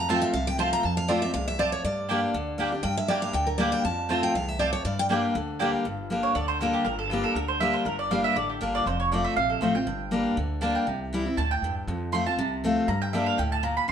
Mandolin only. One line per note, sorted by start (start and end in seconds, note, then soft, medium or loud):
0.09 0.18 C4 medium
0.09 0.19 F4 loud
0.09 0.19 C5 loud
0.09 0.19 A5 loud
0.59 0.69 C4 medium
0.59 0.69 F4 loud
0.59 0.69 C5 medium
0.59 0.69 A5 loud
1.08 1.19 C4 loud
1.08 1.19 F4 loud
1.08 1.19 C5 loud
1.08 1.19 A5 medium
1.59 1.69 C4 medium
1.59 1.69 F4 loud
1.59 1.69 C5 medium
1.59 1.69 A5 loud
2.09 2.19 A#3 loud
2.09 2.19 G4 loud
2.09 2.19 D5 loud
2.09 2.19 G5 loud
2.59 2.69 A#3 medium
2.59 2.69 G4 loud
2.59 2.69 D5 loud
2.59 2.70 G5 loud
3.09 3.19 A#3 medium
3.09 3.19 G4 medium
3.09 3.19 D5 medium
3.09 3.20 G5 loud
3.59 3.69 A#3 medium
3.59 3.69 G4 loud
3.59 3.69 D5 loud
3.59 3.70 G5 loud
4.09 4.19 C4 loud
4.09 4.20 F4 loud
4.09 4.20 C5 loud
4.09 4.20 A5 loud
4.59 4.69 C4 loud
4.59 4.70 F4 loud
4.59 4.70 C5 loud
4.59 4.70 A5 loud
5.10 5.20 A#3 medium
5.10 5.20 G4 loud
5.10 5.20 D5 loud
5.10 5.20 G5 loud
5.59 5.69 A#3 loud
5.59 5.70 G4 loud
5.59 5.70 D5 medium
5.59 5.70 G5 loud
6.23 6.35 C#5 medium
6.35 6.48 D5 loud
6.48 6.60 C5 loud
6.61 6.74 A4 medium
6.73 6.85 G4 medium
6.85 6.98 A#4 medium
6.99 7.10 A4 medium
7.10 7.23 F4 medium
7.24 7.35 A4 medium
7.35 7.48 A#4 medium
7.48 7.60 C5 medium
7.60 7.74 E5 loud
7.74 7.85 C5 medium
7.85 7.98 A#4 medium
7.99 8.11 D5 loud
8.11 8.24 F5 loud
8.24 8.36 E5 loud
8.36 8.49 D5 medium
8.50 8.61 G4 medium
8.61 8.74 A#4 medium
8.75 8.86 D5 loud
8.87 8.99 C5 medium
9.00 9.11 C#5 loud
9.12 9.25 D5 medium
9.24 9.36 E5 loud
9.36 9.50 F5 loud
9.50 9.61 A4 medium
9.62 9.75 C5 medium
9.75 10.33 G5 medium
10.62 10.75 A5 medium
10.75 10.99 G5 medium
11.37 11.50 A5 loud
11.51 11.74 G5 loud
12.13 12.26 C6 loud
12.26 12.50 A5 medium
12.88 13.01 A#5 loud
13.02 13.13 G5 loud
13.13 13.26 E5 medium
13.26 13.38 F5 loud
13.38 13.51 G5 medium
13.52 13.63 A5 loud
13.64 13.76 A#5 medium
13.77 13.88 B5 loud
13.89 13.92 C6 loud